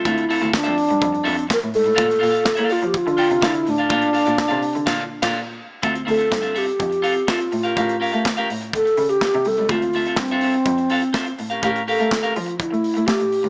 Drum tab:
CC |----------------|----------------|--------x--x----|----------------|
HH |xxox-xoxxxox-xox|xxox-xoxxxox-xox|xxox-xox--------|xxox-xoxxxox-xox|
SD |----o-------o---|----o-------o---|----o---o--o----|----o-------o---|
BD |o---o---o---o---|o---o---o---o---|o---o---o--o----|o---o---o---o---|

CC |----------------|----------------|----------------|
HH |xxox-xoxxxox-xox|xxox-xoxxxox-xox|xxox-xoxxxox-xox|
SD |----o-------o---|----o-------o---|----o-------o---|
BD |o---o---o---o---|o---o---o---o---|o---o---o---o---|